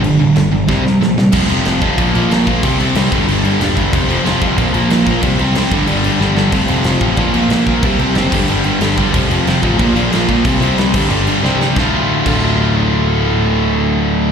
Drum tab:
CC |x-x-----|xxxxxxxx|xxxxxxxx|xxxxxxxx|
SD |--o-oooo|--o---o-|--o---o-|--o---o-|
BD |----o---|o--oo--o|o--o---o|o--oo--o|

CC |xxxxxx--|xxxxxxxx|xxxxxxxx|xxxxxxxx|
SD |--o---oo|--o---o-|--o---o-|--o---o-|
BD |o--o----|o--oo--o|o--o---o|o--oo--o|

CC |xxxxxx--|---x----|--------|
SD |--o---oo|o-------|--------|
BD |o--o----|o--o----|--------|